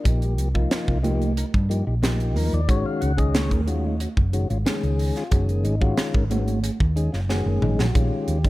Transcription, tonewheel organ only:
0.04 F3 A#3 D#4 G4
0.08 D#4
0.25 G3
0.54 F3 A#3 D#4 F4
1.03 F3 A#3 D#4 G4
1.37 D#4 A#4
1.69 F3 A#3 D#4 G4
1.87 D#4 G4
2.02 F3 A#3 D#4 G4
2.21 G4
2.36 A#4
2.54 D5
2.68 D#3 G#3 C#4 F#4 C#5
2.86 F5
3.01 F#5
3.17 D#3 G#3 C#4 G#4 D#5
3.37 C#5
3.53 A#4
3.67 D#3 G#3 C#4 F4 F#4
3.87 D#4
4.00 C#4 F#4
4.33 D#3 G#3 C#4 F#4
4.50 C#4 F4
4.65 D#3 G#3 C#4 G#4
5.17 F4
5.31 D#3 G#3 C#4 F#4 G#4
5.51 A#3
5.64 D#4
5.81 D#3 G#3 C#4 F4 F#4
5.99 F4
6.15 A#4
6.30 D#3 G#3 C#4 F#4
6.63 C#4 G#4
6.96 D#3 G#3 C#4 D#4 G#4
7.12 C#4 F4
7.29 D#3 G#3 C#4 F#4 G#4
7.48 A#3
7.63 D#4
7.80 F#4
7.94 D#3 G#3 C#4 F4 G4
8.45 D#3 G#3 C#4 D#4

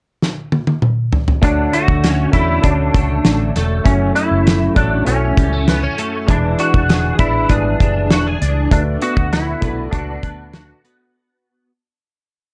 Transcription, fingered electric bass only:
1.43 D2
1.88 D2
2.33 E2
2.64 D2
2.94 C#2
3.25 A1
3.56 E1
3.86 F#1
4.31 F#1
4.77 A1
5.07 B1
5.38 C#2
6.28 E1
6.74 E1
7.19 A1
7.50 G#1
7.81 F#1
8.11 E1
8.42 C#2
8.71 D2
9.17 D2
9.62 B1
9.93 C#2
10.23 D2

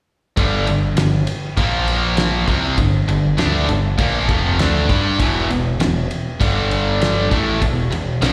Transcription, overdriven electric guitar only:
0.37 G2 D3 G3
0.67 G2 D3
0.97 G2 D3
1.57 A#2 F3 A#3
2.48 C3 G3 C4
2.77 G2 D3
3.08 G2 D3
3.37 D3 A3 D4
3.67 G2 D3
3.98 A#2 F3 A#3
4.28 F2 C3 F3
4.59 D3 A3 D4
4.89 G3 D4 G4
5.19 E2 B2 E3
5.49 E2 B2
5.80 E2 B2
6.40 G2 D3 G3
7.30 A2 E3 A3
7.61 E2 B2
7.91 E2 B2
8.21 A#2 F3 A#3

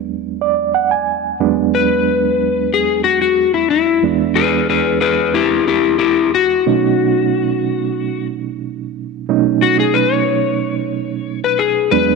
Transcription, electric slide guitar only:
1.75 B4
2.74 G#4
3.04 F#4
3.21 F#4
3.54 E4
3.70 E4
4.35 G#4 B4
4.70 G#4 B4
5.01 G#4 B4
5.34 E4 G4
5.68 E4 G4
5.99 E4 G4
6.35 F#4
9.62 F#4
9.80 G#4
9.94 B4
10.12 C#5
11.44 B4
11.59 G#4
11.91 B4

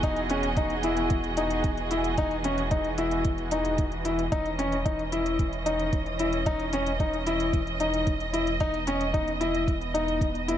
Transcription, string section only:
Already playing: E3 B3 F#4 G#4 D#5
4.32 C#4 D#5
8.60 B3

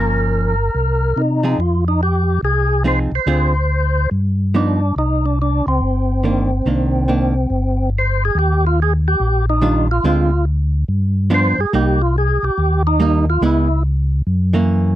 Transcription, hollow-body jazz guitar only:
Already playing: F3 A#3 C#4
1.43 F3 C4 D#4 G#4
2.84 F3 C4 D#4 G#4
3.27 D3 C4 F4 G#4
4.54 F3 B3 D#4
6.24 D#3 A#3 D4
6.66 D#3 A#3 D4
7.08 D#3 A#3 D4
9.62 D#3 G3 D4 F4
10.04 D3 G#3 C4 F4
11.30 F3 B3 D4
11.73 G3 A#3 D#4
13.00 G3 A#3 D#4
13.42 G#3 B3 E4
14.53 E3 A#3 C#4

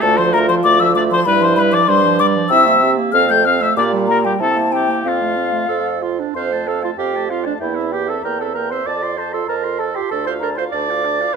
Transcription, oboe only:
0.01 A4
0.17 C5
0.33 A#4
0.48 C5
0.65 D5
0.81 E5
0.97 D5
1.13 C5
1.28 B4
1.44 C5
1.58 B4
1.74 D5
1.89 C5
2.20 D5
2.52 E5
3.14 F5
3.31 G5
3.46 F5
3.62 E5
3.78 D5
4.11 A#4
4.26 G4
4.42 A4
4.75 G4
5.07 F4
6.37 F5
6.52 A5
6.68 F5
6.83 A5
6.99 F5
7.15 A5
7.30 F5
7.45 A5
7.60 G5
7.75 E5
7.92 G5
8.08 E5
8.25 G5
8.42 E5
8.57 G5
8.72 E5
8.88 A5
9.03 C6
9.19 A5
9.33 C6
9.48 A5
9.64 C6
9.79 A5
9.95 C6
10.11 A5
10.27 F5
10.43 A5
10.58 F5
10.74 A5
10.90 F5
11.05 A5
11.21 F5

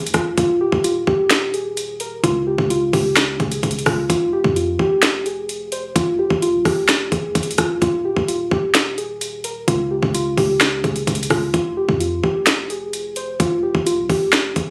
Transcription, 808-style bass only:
Already playing: F1
0.14 F1
0.38 D#1
0.72 D#1
1.07 D#1
2.24 C#2
2.58 C#2
2.93 C#2
3.40 C#2
3.63 C#2
3.86 C#2
4.10 F1
4.44 F2
4.79 F1
5.96 F1
6.30 F1
6.54 C2
6.65 F1
7.12 F1
7.35 F1
7.58 F1
7.82 D#1
8.17 D#1
8.51 D#1
9.68 C#2
10.03 C#2
10.38 C#2
10.84 C#2
11.07 C#2
11.30 C#2
11.54 F1
11.89 F2
12.24 F1
13.40 F1
13.75 F1
13.98 C2
14.10 F1
14.56 F1

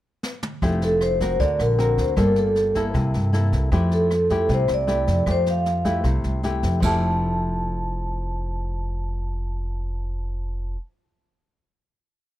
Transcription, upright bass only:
0.62 F1
1.40 D2
1.60 A#1
1.98 D2
2.17 G1
2.95 C2
3.14 G2
3.52 C2
3.72 F2
4.49 C2
4.70 C2
5.07 F2
5.27 F2
6.05 C2
6.24 C2
6.63 F2
6.82 F1

